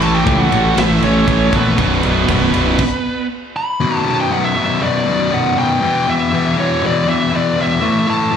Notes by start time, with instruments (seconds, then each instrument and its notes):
Already playing: fingered electric bass A1, string section A3 E4 B4 C#5
0.00 distorted electric guitar A2 E3 A3, lead electric guitar A4 A5, ride
0.15 lead electric guitar G4 G5
0.25 fingered electric bass C#2, distorted electric guitar A2 E3 A3, kick, ride
0.40 lead electric guitar F#4 F#5
0.50 fingered electric bass A1, distorted electric guitar A2 E3 A3, ride
0.75 fingered electric bass A1, distorted electric guitar A2 E3 A3, lead electric guitar E5, snare, ride
0.79 lead electric guitar E4
1.00 fingered electric bass A1, distorted electric guitar A2 E3 A3, lead electric guitar C#5, ride
1.05 lead electric guitar C#4
1.27 fingered electric bass A1, distorted electric guitar A2 E3 A3, kick, ride
1.52 fingered electric bass A#1, distorted electric guitar A2 E3 A3, lead electric guitar B3 B4, kick, ride
1.77 fingered electric bass B0, distorted electric guitar B1 F#2 B2, string section B3 F#4 D5, kick, ride
2.03 fingered electric bass B0, distorted electric guitar B1 F#2 B2, ride
2.28 fingered electric bass B0, distorted electric guitar B1 F#2 B2, kick, ride
2.54 fingered electric bass B0, distorted electric guitar B1 F#2 B2, ride
2.78 kick, crash
3.56 lead electric guitar B5
3.80 distorted electric guitar B1 F#2 B2
4.05 distorted electric guitar B1 F#2 B2
4.09 lead electric guitar A5
4.21 lead electric guitar G5
4.31 distorted electric guitar B1 F#2 B2, lead electric guitar F#5
4.44 lead electric guitar E5
4.56 distorted electric guitar B1 F#2 B2
4.81 distorted electric guitar B1 F#2 B2, lead electric guitar D5
5.06 distorted electric guitar B1 F#2 B2
5.31 distorted electric guitar B1 F#2 B2, lead electric guitar F#5
5.57 distorted electric guitar B1 F#2 B2, lead electric guitar G5
5.81 distorted electric guitar E2 B2 E3
6.07 distorted electric guitar E2 B2 E3, lead electric guitar E5
6.33 distorted electric guitar E2 B2 E3
6.57 distorted electric guitar E2 B2 E3, lead electric guitar C#5
6.82 distorted electric guitar E2 B2 E3, lead electric guitar D5
7.07 distorted electric guitar E2 B2 E3, lead electric guitar E5
7.32 distorted electric guitar E2 B2 E3, lead electric guitar D5
7.56 distorted electric guitar E2 B2 E3
7.61 lead electric guitar E5
7.80 distorted electric guitar A2 E3 A3
8.07 distorted electric guitar A2 E3 A3, lead electric guitar A5
8.31 distorted electric guitar A2 E3 A3